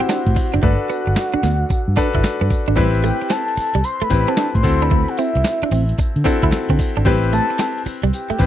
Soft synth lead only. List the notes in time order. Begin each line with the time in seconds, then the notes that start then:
Already playing: F#5
0.64 F#5
3.05 G5
3.31 A5
3.84 C6
4.03 B5
4.28 A5
4.55 C6
4.82 B5
5.09 F#5
5.18 E5
7.33 A5
8.13 G5